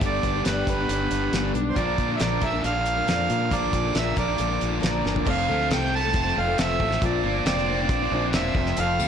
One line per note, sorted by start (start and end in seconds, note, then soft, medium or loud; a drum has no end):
0.00 0.20 G1 medium
0.00 0.43 G2 medium
0.00 0.24 G2 medium
0.00 0.43 D3 medium
0.00 0.24 D3 medium
0.00 0.44 G3 medium
0.00 0.24 G3 medium
0.00 0.45 B3 medium
0.00 0.25 B3 medium
0.00 0.45 D4 medium
0.00 0.45 G4 medium
0.00 kick loud
0.00 closed hi-hat medium
0.04 0.25 D4 medium
0.04 0.25 G4 medium
0.04 0.45 D5 loud
0.23 0.42 G1 medium
0.23 0.35 G3 medium
0.23 0.36 B3 medium
0.23 0.35 D4 medium
0.23 kick medium
0.23 closed hi-hat medium
0.27 0.34 G4 medium
0.36 0.46 G3 soft
0.36 0.47 B3 soft
0.36 0.47 D4 soft
0.36 0.46 G4 medium
0.45 0.64 G1 medium
0.45 0.68 G2 medium
0.45 0.68 D3 medium
0.45 0.66 G3 medium
0.45 0.67 B3 medium
0.45 0.68 D4 medium
0.45 0.69 G4 medium
0.45 0.68 B4 medium
0.45 snare medium
0.45 closed hi-hat medium
0.67 0.86 G1 medium
0.67 0.78 G3 medium
0.67 0.79 B3 medium
0.67 0.79 D4 medium
0.67 0.77 G4 medium
0.67 1.52 B4 medium
0.67 kick medium
0.67 closed hi-hat medium
0.78 0.88 G3 soft
0.78 0.89 B3 soft
0.78 0.90 D4 soft
0.78 0.89 G4 soft
0.89 1.08 G1 medium
0.89 1.00 G3 medium
0.89 1.00 B3 medium
0.89 1.00 D4 medium
0.89 0.98 G4 medium
0.89 closed hi-hat medium
1.00 1.23 G3 soft
1.00 1.22 B3 soft
1.00 1.21 D4 soft
1.00 1.20 G4 medium
1.11 1.29 G1 medium
1.11 closed hi-hat medium
1.21 1.32 G3 soft
1.21 1.33 B3 medium
1.21 1.33 D4 medium
1.21 1.33 G4 medium
1.33 1.51 G1 medium
1.33 1.55 G2 medium
1.33 1.55 D3 medium
1.33 1.52 G3 medium
1.33 1.53 B3 medium
1.33 1.54 D4 medium
1.33 1.55 G4 medium
1.33 snare medium
1.33 closed hi-hat medium
1.54 1.73 B1 medium
1.54 1.76 G3 medium
1.54 1.76 B3 medium
1.54 1.76 D4 medium
1.54 1.77 G4 medium
1.54 closed hi-hat medium
1.69 1.76 C5 medium
1.76 1.95 A#1 medium
1.76 1.98 A#2 medium
1.76 2.41 D3 medium
1.76 1.96 F3 medium
1.76 1.97 A#3 medium
1.76 1.98 D4 medium
1.76 1.99 A#4 medium
1.76 2.16 D5 medium
1.76 kick medium
1.76 closed hi-hat medium
1.97 2.17 A#2 medium
1.97 2.09 F3 medium
1.97 2.09 A#3 medium
1.97 2.09 D4 medium
1.97 2.07 A#4 medium
1.97 kick medium
1.97 closed hi-hat soft
2.08 2.19 A#3 soft
2.08 2.19 D4 soft
2.08 2.19 A#4 medium
2.16 2.41 A#2 medium
2.16 2.39 F3 medium
2.16 2.40 A#3 medium
2.16 2.41 D4 medium
2.16 2.21 E5 medium
2.16 closed hi-hat medium
2.20 2.39 A#1 medium
2.20 2.42 A#4 medium
2.20 2.43 D5 medium
2.20 snare loud
2.41 2.61 A#1 medium
2.41 3.50 A#2 medium
2.41 3.51 D3 medium
2.41 2.52 F3 medium
2.41 2.53 A#3 medium
2.41 2.52 D4 medium
2.41 2.50 A#4 medium
2.41 2.63 E5 medium
2.41 kick medium
2.41 closed hi-hat medium
2.52 2.62 A#3 soft
2.52 2.63 D4 soft
2.52 2.63 A#4 soft
2.62 3.01 A#1 medium
2.62 2.74 F3 medium
2.62 2.75 A#3 medium
2.62 2.74 D4 medium
2.62 2.72 A#4 medium
2.62 3.55 F5 medium
2.62 closed hi-hat medium
2.73 2.97 A#3 soft
2.73 2.96 D4 medium
2.73 2.94 A#4 soft
2.86 closed hi-hat medium
2.95 3.07 A#3 soft
2.95 3.07 D4 medium
2.95 3.07 A#4 medium
3.06 3.27 F2 medium
3.06 3.29 A#2 medium
3.06 3.28 F3 medium
3.06 3.29 A#3 medium
3.06 3.30 D4 medium
3.06 3.31 A#4 medium
3.06 snare loud
3.06 closed hi-hat medium
3.29 3.48 A#2 medium
3.29 3.40 F3 medium
3.29 3.41 A#3 medium
3.29 3.40 D4 medium
3.29 3.38 A#4 medium
3.29 closed hi-hat medium
3.40 3.51 A#3 soft
3.40 3.51 D4 soft
3.40 3.51 A#4 medium
3.50 3.70 A#1 medium
3.50 3.73 A#2 medium
3.50 4.16 D3 medium
3.50 3.71 F3 medium
3.50 3.72 A#3 medium
3.50 3.73 D4 medium
3.50 3.74 A#4 medium
3.50 3.97 D5 medium
3.50 kick medium
3.50 closed hi-hat medium
3.72 3.92 A#1 medium
3.72 3.84 F3 medium
3.72 3.84 A#3 medium
3.72 3.84 D4 medium
3.72 3.82 A#4 medium
3.72 kick medium
3.72 closed hi-hat medium
3.84 3.93 A#3 soft
3.84 3.94 D4 soft
3.84 3.94 A#4 medium
3.93 4.14 A#1 medium
3.93 4.16 A#2 medium
3.93 4.14 F3 medium
3.93 4.15 A#3 medium
3.93 4.17 D4 medium
3.93 4.17 A#4 medium
3.93 4.16 E5 medium
3.93 snare medium
3.93 closed hi-hat medium
4.15 4.36 A#1 medium
4.15 5.27 D3 medium
4.15 4.28 F3 medium
4.15 4.28 A#3 medium
4.15 4.26 D4 medium
4.15 4.24 A#4 medium
4.15 4.84 D5 medium
4.15 kick medium
4.15 closed hi-hat medium
4.20 5.26 A#2 medium
4.26 4.37 A#3 soft
4.26 4.38 D4 soft
4.26 4.38 A#4 soft
4.36 4.58 A#1 medium
4.36 4.49 F3 medium
4.36 4.50 A#3 medium
4.36 4.49 D4 medium
4.36 4.47 A#4 medium
4.36 closed hi-hat medium
4.48 4.72 A#3 soft
4.48 4.70 D4 soft
4.48 4.68 A#4 soft
4.61 4.80 A#1 medium
4.61 closed hi-hat medium
4.70 4.79 A#3 soft
4.70 4.80 D4 medium
4.70 4.81 A#4 medium
4.80 5.02 A#1 medium
4.80 5.03 A#2 medium
4.80 5.01 F3 medium
4.80 5.03 A#3 medium
4.80 5.04 D4 medium
4.80 5.04 A#4 medium
4.80 closed hi-hat medium
4.84 5.29 D5 medium
4.84 snare loud
5.03 5.23 G1 medium
5.03 5.15 F3 medium
5.03 5.16 A#3 medium
5.03 5.14 D4 medium
5.03 5.12 A#4 medium
5.03 snare medium
5.14 5.26 A#3 soft
5.14 5.26 D4 soft
5.14 5.26 A#4 medium
5.14 floor tom medium
5.25 5.48 F1 medium
5.25 5.48 F2 medium
5.25 5.48 C3 medium
5.25 5.46 F3 medium
5.25 5.47 A3 medium
5.25 5.48 C4 medium
5.25 5.49 A4 medium
5.25 kick loud
5.25 crash loud
5.29 5.69 F5 loud
5.47 5.70 D2 medium
5.47 5.69 F3 medium
5.47 5.70 A3 medium
5.47 5.70 C4 medium
5.47 5.70 A4 medium
5.69 6.13 C2 medium
5.69 5.92 F2 medium
5.69 5.93 C3 medium
5.69 5.90 F3 medium
5.69 5.91 A3 medium
5.69 5.92 C4 medium
5.69 5.93 A4 medium
5.69 5.94 G5 loud
5.69 snare loud
5.69 closed hi-hat medium
5.91 6.03 F3 medium
5.91 6.03 A3 medium
5.91 6.02 C4 medium
5.91 6.01 A4 medium
5.95 6.39 A5 loud
6.02 6.26 F3 soft
6.02 6.25 A3 soft
6.02 6.24 C4 soft
6.02 6.22 A4 soft
6.14 6.35 F1 medium
6.14 6.79 C4 medium
6.14 kick loud
6.14 closed hi-hat medium
6.24 6.33 F3 soft
6.24 6.34 A3 soft
6.24 6.35 C4 soft
6.24 6.36 A4 soft
6.34 6.58 F1 medium
6.34 6.47 F3 medium
6.34 6.46 A3 medium
6.34 6.45 C4 medium
6.34 6.44 A4 medium
6.34 6.58 F5 medium
6.45 6.57 F3 soft
6.45 6.58 A3 soft
6.45 6.58 C4 soft
6.45 6.58 A4 medium
6.58 6.79 F1 medium
6.58 6.80 F2 medium
6.58 6.80 C3 medium
6.58 6.78 F3 medium
6.58 6.79 A3 medium
6.58 6.80 C4 medium
6.58 6.81 A4 medium
6.58 7.05 E5 medium
6.58 snare loud
6.58 closed hi-hat medium
6.79 7.01 A1 medium
6.79 6.91 F3 medium
6.79 6.91 A3 medium
6.79 6.90 C4 medium
6.79 6.89 A4 medium
6.79 kick medium
6.90 7.01 F3 soft
6.90 7.02 A3 soft
6.90 7.01 C4 soft
6.90 7.02 A4 medium
6.90 snare soft
7.01 7.23 A#1 medium
7.01 7.24 A#2 medium
7.01 7.22 F3 medium
7.01 7.24 C4 medium
7.01 7.24 D4 medium
7.01 7.25 F4 medium
7.01 7.44 D5 medium
7.01 kick loud
7.01 closed hi-hat medium
7.23 7.45 G1 medium
7.23 7.46 F3 medium
7.23 7.66 A#3 medium
7.23 7.46 C4 medium
7.23 7.46 D4 medium
7.23 7.47 F4 medium
7.45 7.88 F1 medium
7.45 7.68 A#2 medium
7.45 7.67 F3 medium
7.45 7.68 C4 medium
7.45 7.69 D4 medium
7.45 7.69 F4 medium
7.45 8.30 D5 loud
7.45 snare loud
7.45 closed hi-hat medium
7.58 snare soft
7.67 7.79 F3 medium
7.67 8.32 A#3 medium
7.67 7.79 C4 medium
7.67 7.80 D4 medium
7.71 7.79 F4 medium
7.80 8.02 C4 soft
7.80 8.01 D4 soft
7.80 8.00 F4 soft
7.89 8.10 A#1 medium
7.89 9.08 C4 medium
7.89 kick loud
7.89 closed hi-hat medium
8.01 8.12 C4 soft
8.01 8.13 D4 medium
8.01 8.12 F4 medium
8.11 8.33 A#1 medium
8.11 8.55 D3 medium
8.11 8.23 F3 medium
8.11 8.23 C4 medium
8.11 8.24 D4 medium
8.11 8.22 F4 medium
8.23 8.34 C4 soft
8.23 8.34 D4 medium
8.23 8.34 F4 medium
8.33 8.54 E1 medium
8.33 8.56 A#2 medium
8.33 8.55 F3 medium
8.33 8.56 A#3 medium
8.33 8.56 C4 medium
8.33 8.57 D4 medium
8.33 8.57 F4 medium
8.33 8.79 E5 medium
8.33 snare loud
8.33 closed hi-hat medium
8.55 8.76 F1 medium
8.55 8.77 F2 medium
8.55 8.77 F3 medium
8.55 8.78 A3 medium
8.55 8.78 C4 medium
8.55 kick medium
8.59 8.78 F4 medium
8.66 snare soft
8.77 8.98 F1 medium
8.77 9.00 F2 medium
8.77 9.00 C3 medium
8.77 8.97 F3 medium
8.77 8.98 A3 medium
8.77 8.99 C4 medium
8.77 9.00 F4 medium
8.77 9.08 F5 medium
8.77 closed hi-hat medium
8.77 tambourine soft
8.98 9.08 D2 medium
8.98 9.08 F3 medium
8.98 9.08 A3 medium
8.98 9.08 C4 medium
8.98 9.08 F4 medium
8.98 tambourine medium